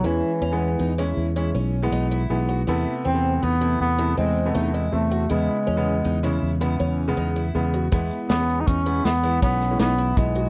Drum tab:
HH |--------------|--------------|--------------|xxxxxxxxxxxxxx|
SD |--------------|--------------|--------------|--o---o--oo---|
BD |--------------|--------------|--------------|o---o---o---o-|